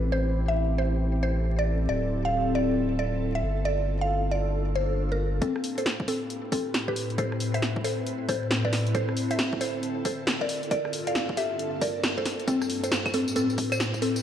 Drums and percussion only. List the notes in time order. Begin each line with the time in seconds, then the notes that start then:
5.42 kick, closed hi-hat
5.56 cross-stick
5.64 open hi-hat
5.78 cross-stick, closed hi-hat
5.86 snare, closed hi-hat
6.00 kick
6.08 open hi-hat
6.30 closed hi-hat
6.52 kick, cross-stick, open hi-hat
6.74 snare, closed hi-hat
6.88 kick
6.96 open hi-hat
7.10 closed hi-hat
7.18 kick, closed hi-hat
7.32 cross-stick
7.40 open hi-hat
7.54 cross-stick, closed hi-hat
7.62 snare, closed hi-hat
7.76 kick
7.84 open hi-hat
8.06 closed hi-hat
8.29 kick, cross-stick, open hi-hat
8.51 snare, closed hi-hat
8.65 kick
8.73 snare, open hi-hat
8.87 closed hi-hat
8.95 kick, closed hi-hat
9.09 cross-stick
9.17 open hi-hat
9.31 cross-stick, closed hi-hat
9.39 snare, closed hi-hat
9.53 kick
9.61 open hi-hat
9.83 closed hi-hat
10.05 kick, cross-stick, open hi-hat
10.27 snare, closed hi-hat
10.41 kick
10.49 open hi-hat
10.63 closed hi-hat
10.71 kick, closed hi-hat
10.85 cross-stick
10.93 open hi-hat
11.07 cross-stick, closed hi-hat
11.15 snare, closed hi-hat
11.29 kick
11.37 open hi-hat
11.59 closed hi-hat
11.81 kick, cross-stick, open hi-hat
12.03 snare, closed hi-hat
12.17 kick
12.26 snare, open hi-hat
12.40 closed hi-hat
12.48 kick, closed hi-hat, tambourine
12.62 cross-stick, tambourine
12.70 open hi-hat
12.84 cross-stick, closed hi-hat, tambourine
12.92 snare, closed hi-hat, tambourine
13.06 kick, tambourine, claves
13.14 open hi-hat
13.28 tambourine
13.36 closed hi-hat, tambourine
13.50 tambourine
13.58 kick, cross-stick, open hi-hat
13.72 tambourine, claves
13.80 snare, closed hi-hat, tambourine
13.94 kick, tambourine
14.02 open hi-hat
14.16 closed hi-hat, tambourine